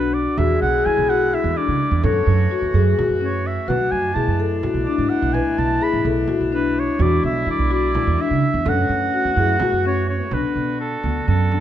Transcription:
Already playing: upright bass B1, woodwind section D3 B3 A4, marimba D4, french horn F#4, oboe B4
0.14 oboe D5
0.37 upright bass E2, woodwind section G#3 E4, marimba F#4, french horn G#4, oboe E5, frame drum
0.62 upright bass B1, oboe F#5, frame drum
0.86 upright bass E3, marimba E4, oboe G#5
0.98 upright bass B1
1.09 marimba F#4, oboe F#5
1.34 marimba E4, oboe E5
1.44 upright bass E2
1.57 marimba D4, oboe D5
1.68 upright bass C#3
1.91 upright bass E2
2.03 upright bass F#2, woodwind section E3 A3 F#4, french horn A4, marimba A4, oboe C#5, frame drum
2.27 upright bass F#2
2.51 marimba F#4
2.62 upright bass E2
2.74 upright bass F#2, marimba G#4, french horn G#4, frame drum
2.99 marimba F#4, frame drum
3.09 upright bass F#2
3.21 marimba C#4, oboe C#5
3.47 oboe E5
3.67 upright bass B1, woodwind section B2 D4, french horn F#4, marimba B4, oboe F#5, frame drum
3.92 upright bass F#2, oboe G#5
4.14 upright bass B2, french horn E4, marimba G#4, oboe A5
4.28 upright bass F#2
4.40 marimba A4
4.63 marimba F#4, frame drum
4.74 upright bass B1
4.86 marimba D4, oboe D5
4.98 upright bass G#2
5.09 oboe F#5
5.22 upright bass B1
5.33 marimba B4, oboe G#5, frame drum
5.58 upright bass B1, oboe A5
5.81 marimba G#4, oboe B5
5.93 upright bass A1
6.05 upright bass B1, marimba A4
6.28 marimba F#4, frame drum
6.41 upright bass B1
6.52 marimba D4, oboe B4
6.79 oboe C#5
6.99 upright bass E2, woodwind section D3 G#3 E4, french horn D4, marimba F#4, oboe D5, frame drum
7.23 upright bass B1, oboe E5, frame drum
7.47 upright bass E3, marimba E4
7.51 oboe D5
7.59 upright bass B1
7.71 marimba F#4, oboe D5
7.95 marimba E4, frame drum
8.07 upright bass E2
8.19 marimba D4, oboe E5
8.31 upright bass C#3
8.54 upright bass E2
8.65 upright bass F#2, woodwind section E3 A3 F#4, french horn C#4, marimba A4, oboe F#5, frame drum
8.89 upright bass F#2, frame drum
9.14 marimba F#4
9.25 upright bass E2
9.36 upright bass F#2, french horn E4, marimba G#4, frame drum
9.59 french horn F#4, marimba F#4, frame drum
9.72 upright bass F#2
9.83 marimba C#4, oboe C#5, frame drum
10.07 french horn C#4, oboe C#5
10.31 upright bass B1, woodwind section D3 B3 F#4, marimba D4, oboe B4, frame drum
10.56 upright bass B2, marimba B3, frame drum
10.81 oboe A4
11.03 upright bass D2, marimba B3, frame drum
11.28 upright bass F#2, marimba C#4, oboe A4, frame drum
11.52 marimba D4, frame drum

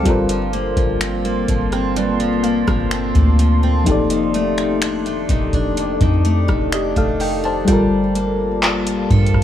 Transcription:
Already playing: steel-string acoustic guitar D3 C4 F4 A4, fm electric piano F5, ambient pad F5
0.03 808-style bass G1, steel-string acoustic guitar G2, fm electric piano G3 F4 A4, ambient pad A#3 A5 C6, kick, closed hi-hat
0.09 fm electric piano A#4 C5
0.29 steel-string acoustic guitar F3, closed hi-hat
0.53 steel-string acoustic guitar A#3, closed hi-hat
0.77 808-style bass G1, steel-string acoustic guitar F3, kick, closed hi-hat
1.01 steel-string acoustic guitar C4, finger snap, closed hi-hat
1.25 steel-string acoustic guitar A#3, closed hi-hat
1.48 808-style bass G1, steel-string acoustic guitar F3, kick, closed hi-hat
1.72 steel-string acoustic guitar C4, cross-stick, closed hi-hat
1.96 steel-string acoustic guitar G2, closed hi-hat
2.20 steel-string acoustic guitar F3, closed hi-hat
2.43 steel-string acoustic guitar A#3, synth pluck F5, closed hi-hat
2.67 808-style bass G1, steel-string acoustic guitar F3, kick, cross-stick
2.91 steel-string acoustic guitar C4, finger snap, closed hi-hat
3.15 808-style bass D2, steel-string acoustic guitar A#3, kick, closed hi-hat
3.39 steel-string acoustic guitar F3, closed hi-hat
3.63 steel-string acoustic guitar C4
3.84 808-style bass F1, steel-string acoustic guitar F2, fm electric piano F3 D#4, synth pluck D#4, ambient pad A4 D5 G5 D6, kick, closed hi-hat
3.88 fm electric piano G4 A4 D5
4.10 steel-string acoustic guitar D#3, closed hi-hat
4.34 steel-string acoustic guitar A3, closed hi-hat
4.58 steel-string acoustic guitar D#3, finger snap, closed hi-hat
4.82 steel-string acoustic guitar D4, finger snap, closed hi-hat
5.06 steel-string acoustic guitar A3, closed hi-hat
5.29 808-style bass F1, steel-string acoustic guitar D#3, kick, closed hi-hat
5.53 steel-string acoustic guitar D4, kick, closed hi-hat
5.77 steel-string acoustic guitar F2, closed hi-hat
6.01 808-style bass F2, steel-string acoustic guitar D#3, kick, closed hi-hat
6.25 steel-string acoustic guitar A3, closed hi-hat
6.48 808-style bass F1, steel-string acoustic guitar D#3, kick, cross-stick
6.72 steel-string acoustic guitar D4, fm electric piano G4 D#5, finger snap, closed hi-hat
6.96 808-style bass F1, steel-string acoustic guitar A3, fm electric piano A4 F5, kick, closed hi-hat
7.20 steel-string acoustic guitar D#3, fm electric piano G5, open hi-hat
7.44 steel-string acoustic guitar D4, fm electric piano C5 A5
7.65 808-style bass G1, fm electric piano G3 F4, steel-string acoustic guitar G3, ambient pad A#3 G4 F5 A5, kick, closed hi-hat
7.70 fm electric piano A4 A#4
8.15 steel-string acoustic guitar A#3, closed hi-hat
8.63 steel-string acoustic guitar F4, synth pluck D5, clap, closed hi-hat
8.87 closed hi-hat
9.10 808-style bass G2, steel-string acoustic guitar A4, kick, closed hi-hat
9.27 closed hi-hat
9.34 kick, cross-stick

